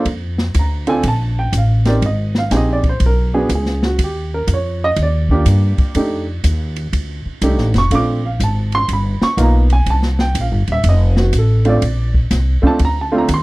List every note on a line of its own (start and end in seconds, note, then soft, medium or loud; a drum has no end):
0.05 0.53 F2 medium
0.05 kick soft
0.05 ride medium
0.38 snare soft
0.54 1.02 D2 medium
0.54 kick soft
0.54 hi-hat pedal medium
0.54 ride medium
0.59 0.89 A#5 medium
0.87 1.02 C4 medium
0.87 1.02 D4 medium
0.87 1.02 F4 medium
0.87 1.02 A4 medium
0.87 1.04 G#5 medium
0.87 ride soft
1.03 1.51 A#1 medium
1.03 kick soft
1.03 ride medium
1.08 1.37 A5 medium
1.39 1.54 G5 medium
1.52 2.00 A1 medium
1.52 kick soft
1.52 hi-hat pedal medium
1.52 ride medium
1.57 1.87 F5 medium
1.85 2.01 C4 medium
1.85 2.01 D#4 medium
1.85 2.01 G4 medium
1.85 2.01 A#4 medium
1.85 2.03 D5 medium
1.85 snare soft
1.85 ride soft
2.02 2.50 G#1 medium
2.02 kick soft
2.02 ride medium
2.06 2.35 D#5 medium
2.35 2.53 F5 medium
2.35 snare soft
2.51 2.99 A#1 medium
2.51 2.81 C4 medium
2.51 2.80 D#4 medium
2.51 2.81 G4 medium
2.51 2.81 G#4 medium
2.51 kick soft
2.51 snare soft
2.51 hi-hat pedal medium
2.51 ride medium
2.57 2.70 D#5 medium
2.73 2.86 D5 medium
2.83 kick soft
2.83 ride soft
2.89 3.03 C5 medium
3.00 3.48 B1 medium
3.00 kick soft
3.00 ride medium
3.06 3.49 A#4 medium
3.34 3.48 B3 medium
3.34 3.48 D4 medium
3.34 3.48 F#4 medium
3.34 3.49 G#4 medium
3.49 3.97 C#2 medium
3.49 kick soft
3.49 hi-hat pedal medium
3.49 ride medium
3.55 3.84 G#4 medium
3.66 snare soft
3.83 4.00 F#4 medium
3.83 snare soft
3.99 4.46 D#2 medium
3.99 kick soft
3.99 ride medium
4.04 4.33 G4 medium
4.34 4.49 A#4 medium
4.47 4.95 F2 medium
4.47 kick soft
4.47 hi-hat pedal soft
4.47 ride medium
4.54 4.82 C#5 medium
4.84 4.98 D#5 loud
4.96 5.44 D#2 medium
4.96 kick soft
4.96 ride medium
5.03 6.43 D5 medium
5.29 5.92 A#3 medium
5.29 5.92 D4 medium
5.29 5.93 F4 medium
5.29 5.93 G4 medium
5.29 kick soft
5.45 5.76 G2 medium
5.45 kick soft
5.45 hi-hat pedal medium
5.45 ride medium
5.78 muted upright bass stroke soft
5.78 kick medium
5.78 ride soft
5.95 6.42 F2 medium
5.95 6.24 A3 medium
5.95 6.25 D4 medium
5.95 6.25 D#4 medium
5.95 6.25 G4 medium
5.95 kick soft
5.95 ride medium
6.44 6.91 D#2 medium
6.44 kick soft
6.44 hi-hat pedal medium
6.44 ride medium
6.76 ride soft
6.93 7.23 D2 medium
6.93 kick soft
6.93 ride medium
7.25 muted upright bass stroke soft
7.42 7.57 C2 medium
7.42 7.72 A3 medium
7.42 7.72 D4 medium
7.42 7.72 D#4 medium
7.42 7.72 G4 medium
7.42 kick soft
7.42 hi-hat pedal medium
7.42 ride medium
7.57 7.74 A1 medium
7.57 snare soft
7.74 7.89 F1 medium
7.74 snare soft
7.74 ride soft
7.78 7.92 C#6 loud
7.91 8.38 A#1 medium
7.91 8.20 A3 medium
7.91 8.20 C4 medium
7.91 8.20 D4 medium
7.91 8.21 F4 medium
7.91 kick soft
7.91 ride medium
7.95 8.24 D6 loud
8.26 8.40 F5 medium
8.40 8.87 G#1 medium
8.40 8.73 A5 medium
8.40 kick soft
8.40 hi-hat pedal medium
8.40 ride medium
8.72 8.90 C6 loud
8.72 ride soft
8.88 9.19 G1 medium
8.88 kick soft
8.88 ride medium
8.93 9.22 B5 medium
9.21 9.38 C#6 loud
9.21 muted upright bass stroke soft
9.21 snare medium
9.37 9.85 B1 medium
9.37 9.67 A#3 medium
9.37 9.67 B3 medium
9.37 9.67 D#4 medium
9.37 9.67 F4 medium
9.37 kick soft
9.37 hi-hat pedal medium
9.37 ride medium
9.43 9.71 A#5 medium
9.70 9.87 G#5 loud
9.70 ride soft
9.86 10.34 C2 medium
9.86 kick soft
9.86 ride medium
9.90 10.20 A5 medium
10.03 snare soft
10.19 10.36 G5 medium
10.19 snare soft
10.35 10.51 A#1 medium
10.35 kick soft
10.35 hi-hat pedal soft
10.35 ride medium
10.41 10.69 F5 medium
10.51 10.67 G1 medium
10.67 10.83 D#1 medium
10.67 ride soft
10.72 10.86 E5 loud
10.84 11.31 F1 medium
10.84 kick soft
10.84 ride medium
10.89 11.18 D#5 medium
11.16 11.34 F#4 medium
11.16 snare soft
11.33 11.80 A1 medium
11.33 kick soft
11.33 hi-hat pedal medium
11.33 ride medium
11.38 11.67 A4 medium
11.65 11.80 A3 medium
11.65 11.80 C4 medium
11.65 11.80 D4 medium
11.65 11.81 F4 medium
11.65 ride soft
11.69 12.13 D5 medium
11.82 12.29 A#1 medium
11.82 kick soft
11.82 ride medium
12.14 kick soft
12.31 12.61 C2 medium
12.31 kick soft
12.31 snare soft
12.31 hi-hat pedal medium
12.31 ride medium
12.62 12.78 A3 medium
12.62 12.78 C4 medium
12.62 12.78 D4 medium
12.62 12.78 F4 medium
12.62 muted upright bass stroke soft
12.62 kick medium
12.67 12.81 A5 loud
12.79 13.27 D2 medium
12.79 kick soft
12.79 ride medium
12.85 12.98 A#5 loud
13.01 13.15 A5 medium
13.12 13.27 A3 medium
13.12 13.27 C4 medium
13.12 13.27 D4 medium
13.12 13.27 F4 medium
13.18 13.31 A#5 medium
13.28 13.43 D#2 loud
13.28 kick soft
13.28 hi-hat pedal medium
13.28 ride medium
13.34 13.43 C6 loud